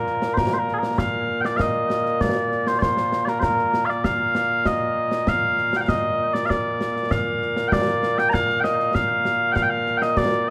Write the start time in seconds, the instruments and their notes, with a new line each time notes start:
Already playing: bagpipes A#2 A#3 A#4
0.07 snare
0.22 snare
0.34 bagpipes A#4 C5, concert bass drum, snare
0.54 bagpipes C5
0.59 bagpipes A#4
0.68 snare
0.74 bagpipes G#4
0.79 bagpipes A#4
0.83 snare
0.98 bagpipes F5, concert bass drum, snare
1.41 bagpipes G5, snare
1.45 bagpipes D5
1.57 bagpipes F5, concert bass drum, snare
1.61 bagpipes D#5
1.90 snare
2.06 snare
2.21 bagpipes D5, concert bass drum, snare
2.52 snare
2.67 bagpipes C5, snare
2.79 bagpipes C5 D5, concert bass drum, snare
2.97 snare
3.12 snare
3.25 bagpipes A#4 D5, snare
3.40 bagpipes A#4 C5, concert bass drum, snare
3.58 snare
3.74 snare
3.85 bagpipes F5, snare
3.90 bagpipes D5
4.04 bagpipes F5, concert bass drum, snare
4.35 snare
4.66 bagpipes D#5, concert bass drum, snare
5.11 snare
5.27 bagpipes F5, concert bass drum, snare
5.58 snare
5.73 bagpipes G5, snare
5.81 bagpipes F5
5.88 bagpipes D#5, concert bass drum, snare
6.34 bagpipes D5, snare
6.46 bagpipes D5 F5
6.50 concert bass drum, snare
6.81 snare
6.96 snare
7.11 bagpipes F5, concert bass drum, snare
7.42 snare
7.57 snare
7.68 bagpipes G5, concert bass drum, snare
7.73 bagpipes D5
7.87 snare
8.03 snare
8.18 bagpipes G5, snare
8.29 bagpipes A#5
8.33 bagpipes F5, concert bass drum, snare
8.49 snare
8.60 bagpipes D#5 G5, snare
8.79 snare
8.95 bagpipes F5, concert bass drum, snare
9.25 snare
9.52 bagpipes F5 G5, concert bass drum, snare
9.63 bagpipes G5
9.70 bagpipes F5
9.86 snare
9.97 bagpipes G5
10.02 bagpipes D#5, snare
10.17 bagpipes D5, concert bass drum, snare